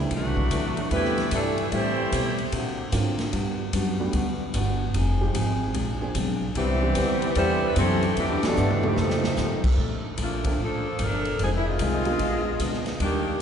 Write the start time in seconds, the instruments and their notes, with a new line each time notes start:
0.10 upright bass C2, trombone section G2 A2 F#3, steel-string acoustic guitar C3 E3 A3 D4, saxophone section E3 A3 D4 F#4, kick, ride
0.37 kick
0.51 upright bass D2, steel-string acoustic guitar C3 E3 A3 D4, kick, hi-hat pedal, ride
0.77 ride
0.91 upright bass E2, steel-string acoustic guitar C3 E3 A3 D4, trombone section E3 G3 B3, grand piano G3 A3 C4 D4 E4, saxophone section A3 E4 G4 B4, kick, ride
1.05 snare
1.18 snare, ride
1.31 upright bass G2, trombone section A2 E3 A3, steel-string acoustic guitar C3 E3 A3 D4, saxophone section G3 D4 E4 A4, kick, hi-hat pedal, ride
1.58 ride
1.71 steel-string acoustic guitar A2 G3 C4 E4, upright bass A2, trombone section E3 G3 C4, saxophone section A3 E4 G4 C5, kick, ride
2.11 steel-string acoustic guitar A2 G3 C4 E4, upright bass B2, kick, hi-hat pedal, ride
2.38 ride
2.51 upright bass A#2, steel-string acoustic guitar D3 A#3 C4 F#4, kick, ride
2.91 upright bass G#2, steel-string acoustic guitar D3 A#3 C4 F#4, grand piano F#3 A#3 C4 D4 F4, kick, hi-hat pedal, ride
3.19 snare, ride
3.32 upright bass G2, steel-string acoustic guitar G3 B3 D4 F#4, kick, ride
3.73 upright bass F#2, steel-string acoustic guitar G3 B3 D4 F#4, kick, hi-hat pedal, ride
4.00 grand piano G3 A3 B3 D4 F#4
4.13 upright bass D2, steel-string acoustic guitar G3 B3 D4 F#4, kick, ride
4.53 upright bass G1, steel-string acoustic guitar G3 B3 D4 F#4, kick, hi-hat pedal, ride
4.94 upright bass F1, steel-string acoustic guitar F3 C4 D#4 G#4, kick, ride
5.21 grand piano F3 G#3 C4 D#4 G4
5.34 upright bass G#1, steel-string acoustic guitar F3 C4 D#4 G#4, kick, hi-hat pedal, ride
5.74 upright bass A#1, steel-string acoustic guitar A#2 G#3 C4 D4, kick, ride
6.02 grand piano F3 A#3 C4 D4 G#4
6.14 upright bass B1, steel-string acoustic guitar A#2 G#3 C4 D4, kick, hi-hat pedal, ride
6.55 upright bass C2, steel-string acoustic guitar C3 G3 B3 E4, trombone section C3 E3 G3, saxophone section E3 B3 C4 G4, kick, ride
6.82 grand piano E3 B3 C4 D4 G4
6.95 upright bass D2, steel-string acoustic guitar C3 G3 B3 E4, kick, hi-hat pedal, ride
7.22 ride
7.35 upright bass E2, steel-string acoustic guitar C3 G3 B3 E4, grand piano E3 B3 C4 D4 A4, trombone section E3 G3 C4, saxophone section G3 B3 E4 C5, kick, ride
7.62 trombone section E3 G3 B3, saxophone section G3 C4 E4 B4
7.76 upright bass F#2, steel-string acoustic guitar C3 G3 B3 E4, trombone section C3 E3 A3, grand piano E3 B3 C4 D4 G4, saxophone section C4 E4 G4 A4, kick, hi-hat pedal, ride
8.02 ride
8.16 upright bass E2, trombone section B2 D3 G3, steel-string acoustic guitar E3 B3 D4 G4, saxophone section E3 B3 D4 G4, kick, ride
8.43 trombone section B2 D3 A3, grand piano E3 G3 B3 D4 F#4, saxophone section G3 D4 E4 A4, muted upright bass stroke, snare, ride
8.56 upright bass G2, steel-string acoustic guitar E3 B3 D4 G4, hi-hat pedal
8.71 mid tom
8.83 trombone section B2 D3 G3, saxophone section E3 B3 D4 G4, grand piano F3 A3 C4 D#4 G4, mid tom
8.96 steel-string acoustic guitar F2 D#3 A3 C4, upright bass F2, trombone section C3 D#3 A3, saxophone section A4, snare
9.00 saxophone section F3 C4 D#4
9.10 snare
9.24 snare
9.37 steel-string acoustic guitar F2 D#3 A3 C4, upright bass A2, snare, hi-hat pedal
9.64 kick, crash
9.76 steel-string acoustic guitar A#2 F3 A3 D4, upright bass A#2, kick
10.17 upright bass A#1, steel-string acoustic guitar A#2 F3 A3 D4, kick, hi-hat pedal, ride
10.22 saxophone section A3 A#3 D4 F4
10.44 grand piano F3 A#3 C4 D4 A4, kick, ride
10.58 upright bass A1, steel-string acoustic guitar A#2 F3 A3 D4, saxophone section A#3 D4 A4, kick
10.62 saxophone section F3
10.99 upright bass G1, steel-string acoustic guitar A#2 F3 A3 D4, saxophone section F3 D4 A4 A#4, kick, hi-hat pedal, ride
11.25 ride
11.39 upright bass F1, steel-string acoustic guitar F2 D#3 G#3 C4, saxophone section F3 C4 D#4 G#4, kick, ride
11.57 saxophone section E4
11.67 saxophone section G#3 C4 D#4 F4
11.79 upright bass C2, steel-string acoustic guitar F2 D#3 G#3 C4, kick, hi-hat pedal, ride
12.05 grand piano D3 G#3 A#3 B3 F4, ride
12.19 upright bass A#1, steel-string acoustic guitar A#2 G#3 B3 D4, kick, ride
12.60 upright bass D2, steel-string acoustic guitar A#2 G#3 B3 D4, kick, hi-hat pedal, ride
12.73 snare
12.86 snare, ride
12.99 upright bass D#2, steel-string acoustic guitar D#3 G3 A#3 D4, saxophone section D#3 A#3 D4 G4, kick, ride